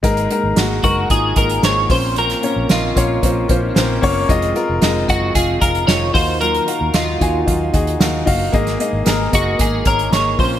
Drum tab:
HH |xxx-x-x-x-xxx-o-|xxx-x-x-x-x-x-o-|xxx-x-x-x-xxx-o-|xxx-x-x-x-xxx-o-|
SD |----o-------o---|-o--o-------o---|----o-------o---|----o-------o---|
BD |o-----o-o-o---o-|------o-o-o---o-|o-----o-o-o---o-|------o-o-o---o-|

HH |xxx-x-x-x-xxx-o-|
SD |-o--o-------o---|
BD |o-----o-o-o---o-|